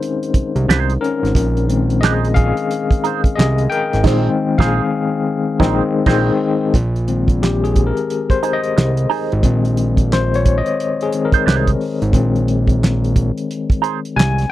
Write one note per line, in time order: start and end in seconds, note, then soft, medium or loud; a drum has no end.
0.00 1.68 D#3 medium
0.00 1.69 G#3 soft
0.00 1.69 C4 medium
0.00 1.02 C#4 medium
0.00 6.76 D#4 medium
0.00 1.01 A#4 medium
0.00 6.76 C5 medium
0.00 closed hi-hat medium
0.23 closed hi-hat soft
0.34 0.43 C2 soft
0.34 kick medium
0.34 closed hi-hat medium
0.56 0.66 C2 medium
0.56 closed hi-hat soft
0.68 0.98 C2 medium
0.68 0.92 D#4 medium
0.68 0.92 G#4 medium
0.68 0.93 C5 loud
0.68 snare loud
0.68 clap medium
0.90 closed hi-hat soft
1.01 1.99 C#4 medium
1.01 2.05 A#4 medium
1.01 closed hi-hat medium
1.23 1.34 G#1 medium
1.23 snare soft
1.23 closed hi-hat soft
1.35 2.53 A#1 loud
1.35 kick loud
1.35 closed hi-hat medium
1.57 closed hi-hat soft
1.68 2.16 D#3 medium
1.68 2.17 G#3 soft
1.68 2.17 C4 medium
1.68 closed hi-hat medium
1.90 closed hi-hat soft
2.01 2.26 D#4 medium
2.01 2.34 G#4 medium
2.01 2.36 D#5 medium
2.01 snare loud
2.01 clap medium
2.05 2.27 G#4 medium
2.05 2.27 C5 medium
2.25 closed hi-hat soft
2.34 3.33 G#4 medium
2.34 3.39 F5 loud
2.34 kick medium
2.34 closed hi-hat medium
2.57 closed hi-hat soft
2.71 closed hi-hat medium
2.91 kick medium
2.91 closed hi-hat soft
3.04 3.20 D#4 medium
3.04 3.21 G#4 medium
3.04 3.22 C5 medium
3.04 closed hi-hat medium
3.24 kick medium
3.24 closed hi-hat soft
3.35 3.68 C2 medium
3.35 3.69 G#4 medium
3.35 3.68 D#5 medium
3.40 snare loud
3.40 clap medium
3.58 closed hi-hat medium
3.70 4.03 A#4 medium
3.70 4.05 G5 loud
3.70 closed hi-hat medium
3.93 4.04 G#1 medium
3.93 snare soft
3.93 closed hi-hat soft
4.04 4.29 A#1 loud
4.04 4.29 D#3 loud
4.04 4.30 G#3 medium
4.04 4.30 C4 medium
4.04 4.29 D#4 medium
4.04 4.29 G#4 medium
4.04 4.30 C5 medium
4.04 kick loud
4.04 snare loud
4.04 crash medium
4.58 4.81 A#1 loud
4.58 4.81 D#4 medium
4.58 4.82 G#4 loud
4.58 4.82 G#4 medium
4.58 4.82 C5 medium
4.58 4.80 F5 medium
4.58 kick loud
4.58 snare loud
5.60 5.82 A#1 loud
5.60 5.82 D#3 loud
5.60 5.82 G#3 loud
5.60 5.82 C4 loud
5.60 5.82 D#4 medium
5.60 5.82 G#4 medium
5.60 5.83 C5 medium
5.60 kick loud
5.60 snare loud
6.06 6.31 A#1 loud
6.06 6.31 D#3 medium
6.06 6.31 G#3 medium
6.06 6.31 C4 medium
6.06 6.31 D#4 loud
6.06 6.32 G#4 medium
6.06 6.32 C5 medium
6.06 kick loud
6.06 snare loud
6.06 crash medium
6.74 7.93 A#1 loud
6.74 kick loud
6.74 closed hi-hat medium
6.96 closed hi-hat soft
7.08 9.42 D#3 medium
7.08 9.42 G#3 soft
7.08 9.43 C4 medium
7.08 closed hi-hat medium
7.28 kick medium
7.28 closed hi-hat soft
7.43 7.53 G4 medium
7.43 snare loud
7.43 clap medium
7.64 7.74 G#4 medium
7.64 closed hi-hat soft
7.76 kick medium
7.76 closed hi-hat medium
7.87 8.33 A#4 medium
7.97 closed hi-hat soft
8.10 closed hi-hat medium
8.30 8.54 C5 medium
8.30 kick medium
8.30 closed hi-hat soft
8.43 8.59 D#4 medium
8.43 8.60 G#4 medium
8.43 8.60 C5 medium
8.43 closed hi-hat medium
8.53 9.17 D#5 medium
8.64 closed hi-hat soft
8.76 9.07 C2 medium
8.76 muted clean electric guitar stroke soft
8.76 snare loud
8.76 clap medium
8.97 closed hi-hat medium
9.10 9.31 D#4 medium
9.10 9.32 G#4 medium
9.10 9.32 C5 medium
9.10 open hi-hat soft
9.32 9.43 G#1 medium
9.32 closed hi-hat soft
9.43 10.62 A#1 loud
9.43 9.91 D#3 medium
9.43 9.92 G#3 medium
9.43 9.92 C4 medium
9.43 kick loud
9.43 closed hi-hat medium
9.65 closed hi-hat soft
9.77 closed hi-hat medium
9.97 kick medium
9.97 closed hi-hat soft
10.13 10.23 C5 medium
10.13 snare loud
10.13 clap medium
10.34 10.45 C#5 medium
10.34 closed hi-hat soft
10.46 kick medium
10.46 closed hi-hat medium
10.58 11.03 D#5 medium
10.66 closed hi-hat soft
10.80 closed hi-hat medium
11.01 11.25 G#4 medium
11.01 closed hi-hat soft
11.12 11.44 D#3 soft
11.12 11.44 G#3 soft
11.12 11.44 C4 soft
11.12 closed hi-hat medium
11.25 11.88 A#4 medium
11.32 11.45 D#4 medium
11.32 11.44 G#4 soft
11.32 11.44 C5 medium
11.32 kick medium
11.32 closed hi-hat soft
11.46 11.76 C2 medium
11.46 11.69 D#4 medium
11.46 11.70 G#4 medium
11.46 11.70 C5 medium
11.46 snare loud
11.46 clap medium
11.67 kick medium
11.67 closed hi-hat medium
11.81 open hi-hat soft
12.02 12.13 G#1 medium
12.02 closed hi-hat soft
12.13 13.32 A#1 loud
12.13 14.52 D#3 medium
12.13 14.52 G#3 soft
12.13 14.52 C4 medium
12.13 kick loud
12.13 closed hi-hat medium
12.36 closed hi-hat soft
12.48 closed hi-hat medium
12.67 kick medium
12.67 closed hi-hat soft
12.84 snare loud
12.84 clap medium
13.04 closed hi-hat soft
13.16 kick loud
13.16 closed hi-hat medium
13.38 closed hi-hat soft
13.51 closed hi-hat medium
13.70 kick medium
13.70 closed hi-hat soft
13.82 13.99 D#4 medium
13.82 13.99 G#4 medium
13.82 13.99 C5 medium
13.82 closed hi-hat medium
14.05 closed hi-hat soft
14.16 14.46 C2 medium
14.16 14.51 G#5 loud
14.16 muted clean electric guitar stroke soft
14.16 snare loud
14.20 clap loud
14.38 snare soft
14.38 closed hi-hat medium